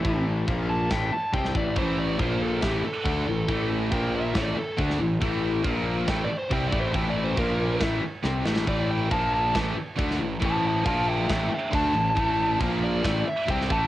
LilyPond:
<<
  \new Staff \with { instrumentName = "Lead electric guitar" } { \time 4/4 \key a \minor \tempo 4 = 138 e'8 r4 a''8 g''8 a''8 g''8 d''8 | c''8 d''8 c''8 a'8 g'8 a'4.~ | a'8 r8 g''8 e''8 d''8 a'8 r4 | r2 \tuplet 3/2 { g''8 d''8 c''8 g''8 d''8 c''8 } |
\tuplet 3/2 { g''8 d''8 c''8 } bes'4 r2 | d''8 g''8 a''8 a''8 r2 | <c'' a''>8 <c'' a''>8 <f'' a''>8 <e'' g''>8 <e'' g''>8 <e'' g''>8 a''4~ | a''4 r8 d''4 e''8 g''8 a''8 | }
  \new Staff \with { instrumentName = "Distorted electric guitar" } { \clef bass \time 4/4 \key a \minor r1 | <a, e a>4 <bes, f bes>4 <a, e a>8 r8 <d a d'>8 <a, e>8 | <a, e a>4 <bes, f bes>4 <a, e a>8 r8 <d a d'>8 <a, e>8 | <a, e a>4 <bes, f bes>4 <a, e a>8 r8 <c g c'>8 <a, e a>8 |
<a, e a>4 <bes, f bes>4 <a, e a>8 r8 <c g c'>8 <a, e a>8 | <a, e a>4 <bes, f bes>4 <a, e a>8 r8 <d a d'>8 <a, e>8 | <a, e a>4 <bes, f bes>4 <a, e a>8 r8 <d a d'>8 <a, e>8 | <a, e a>4 <bes, f bes>4 <a, e a>8 r8 <c g c'>8 <a, e a>8 | }
  \new Staff \with { instrumentName = "Distorted electric guitar" } { \clef bass \time 4/4 \key a \minor <a, e a>4 <bes, f bes>4 <a, e a>8 r8 <c g c'>8 <a, e a>8 | <a, e a>4 <bes, f bes>4 <a, e a>8 r8 <d a d'>8 <a, e>8 | <a, e a>4 <bes, f bes>4 <a, e a>8 r8 <d a d'>8 <a, e>8 | <a, e a>4 <bes, f bes>4 <a, e a>8 r8 <c g c'>8 <a, e a>8 |
<a, e a>4 <bes, f bes>4 <a, e a>8 r8 <c g c'>8 <a, e a>8 | <a, e a>4 <bes, f bes>4 <a, e a>8 r8 <d a d'>8 <a, e>8 | <a, e a>4 <bes, f bes>4 <a, e a>8 r8 <d a d'>8 <a, e>8 | <a, e a>4 <bes, f bes>4 <a, e a>8 r8 <c g c'>8 <a, e a>8 | }
  \new Staff \with { instrumentName = "Overdriven electric guitar" } { \clef bass \time 4/4 \key a \minor <a, e a>4 <bes, f bes>4 <a, e a>8 r8 <c g c'>8 <a, e a>8 | <a, e a>4 <bes, f bes>4 <a, e a>8 r8 <d a d'>8 <a, e>8 | <a, e a>4 <bes, f bes>4 <a, e a>8 r8 <d a d'>8 <a, e>8 | <a, e a>4 <bes, f bes>4 <a, e a>8 r8 <c g c'>8 <a, e a>8 |
<a, e a>4 <bes, f bes>4 <a, e a>8 r8 <c g c'>8 <a, e a>8 | <a, e a>4 <bes, f bes>4 <a, e a>8 r8 <d a d'>8 <a, e>8 | <a, e a>4 <bes, f bes>4 <a, e a>8 r8 <d a d'>8 <a, e>8 | <a, e a>4 <bes, f bes>4 <a, e a>8 r8 <c g c'>8 <a, e a>8 | }
  \new Staff \with { instrumentName = "Picked electric bass" } { \clef bass \time 4/4 \key a \minor a,,4 bes,,4 a,,8 r8 c,8 a,,8 | a,,4 bes,,4 a,,8 r8 d,8 a,,8 | a,,4 bes,,4 a,,8 r8 d,8 a,,8 | a,,4 bes,,4 a,,8 r8 c,8 a,,8 |
a,,4 bes,,4 a,,8 r8 c,8 a,,8 | a,,4 bes,,4 a,,8 r8 d,8 a,,8 | a,,4 bes,,4 a,,8 r8 d,8 a,,8 | a,,4 bes,,4 a,,8 r8 c,8 a,,8 | }
  \new DrumStaff \with { instrumentName = "Drums" } \drummode { \time 4/4 <cymc bd>4 <cymc bd>4 <cymc bd sn>4 <cymc bd>16 sn16 bd8 | <cymc bd>4 <cymc bd>4 <cymc bd sn>4 <cymc bd>4 | <cymc bd>4 <cymc bd>4 <cymc bd sn>4 <cymc bd>16 sn8. | <cymc bd>4 <cymc bd>4 <cymc bd sn>4 <cymc bd>8 bd8 |
<cymc bd>4 <cymc bd>4 <cymc bd sn>4 sn8 sn16 sn16 | <cymc bd>4 <cymc bd>4 <cymc bd sn>4 <cymc bd>16 sn8. | <cymc bd>4 <cymc bd>4 <cymc bd sn>4 <cymc bd>4 | <cymc bd>4 <cymc bd>4 <cymc bd sn>4 <cymc bd>16 sn16 bd8 | }
>>